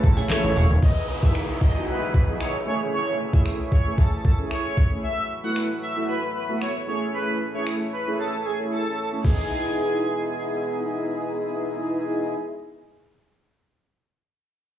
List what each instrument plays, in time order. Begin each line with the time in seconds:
Already playing: accordion C#3 E3 A3 E4
0.03 analog synth bass A1, digital synth lead A4, muted clean electric guitar stroke, kick, closed hi-hat
0.17 clean electric guitar A3 C#4 G#4
0.29 analog polysynth A3 C#4 E4 G#4 A4, digital synth lead C#5, muted clean electric guitar stroke, snare, clap, closed hi-hat
0.44 analog synth bass A1, muted clean electric guitar stroke
0.56 analog synth bass E1, clean electric guitar A3 C#4 G#4, open hi-hat
0.70 analog synth bass D#1, muted clean electric guitar stroke
0.82 accordion B2 E3 D#4 E4 G#4, digital synth lead D#5, kick, downlifter
1.22 analog polysynth B3 D#4 E4 G#4, digital synth lead E5, kick
1.35 finger snap
1.61 digital synth lead D#5, kick
1.75 analog polysynth B3 D#4 E4 F#4
1.88 digital synth lead B4
2.14 digital synth lead B4, kick
2.28 analog polysynth B3 D#4 E4 G#4
2.41 digital synth lead C#5, finger snap
2.66 accordion A2 C#4, analog polysynth A3 C#4 E4 G#4, digital synth lead C#5
2.93 digital synth lead C#5
3.33 analog polysynth A3 C#4 E4 G#4, digital synth lead E5, kick
3.46 finger snap
3.72 digital synth lead C#5, kick
3.86 analog polysynth A3 C#4 E4 G#4
3.98 digital synth lead A4, kick
4.25 digital synth lead A4, kick
4.38 analog polysynth A3 C#4 E4 G#4
4.51 digital synth lead C#5, finger snap
4.77 kick
4.91 analog polysynth A3 C#4 E4 G#4
5.04 accordion F#3 B3, digital synth lead E5
5.43 analog polysynth A3 B3 E4 F#4, digital synth lead F#5
5.56 finger snap
5.83 digital synth lead E5
5.96 analog polysynth A3 B3 E4 F#4
6.09 digital synth lead B4
6.35 digital synth lead B4
6.49 analog polysynth A3 B3 E4 F#4
6.61 digital synth lead C#5, finger snap
6.87 analog polysynth A3 C#4 E4 G#4, accordion A3 C#4, digital synth lead C#5
7.14 digital synth lead B4
7.54 analog polysynth A3 C#4 E4 G#4, digital synth lead C#5
7.67 finger snap
7.93 digital synth lead B4
8.07 analog polysynth A3 C#4 E4 G#4
8.19 digital synth lead A4
8.46 digital synth lead G#4
8.59 analog polysynth A3 C#4 E4 G#4
8.72 digital synth lead A4
9.12 analog polysynth A3 C#4 E4 G#4
9.24 accordion B2 E3 G#3 G#4 D#5, analog polysynth B3 D#4 E4 G#4, digital synth lead G#4, kick, crash